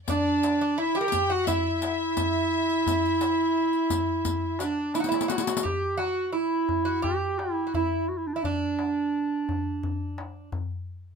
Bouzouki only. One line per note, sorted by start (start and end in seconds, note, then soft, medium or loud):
0.09 0.60 D4 medium
0.61 0.79 D4 medium
0.78 0.96 E4 medium
0.95 1.00 G4 medium
1.01 1.08 A#4 medium
1.08 1.28 G4 medium
1.30 1.47 F#4 medium
1.48 4.55 E4 medium
4.61 4.94 D4 medium
4.95 5.00 E4 medium
5.00 5.08 F#4 medium
5.09 5.28 E4 medium
5.28 5.63 F#4 medium
5.63 5.97 G4 medium
5.97 6.32 F#4 medium
6.33 6.85 E4 medium
6.85 7.02 F#4 medium
7.02 7.66 G4 medium
7.67 7.74 F#4 soft
7.75 8.05 E4 medium
8.36 8.43 E4 medium
8.45 10.49 D4 medium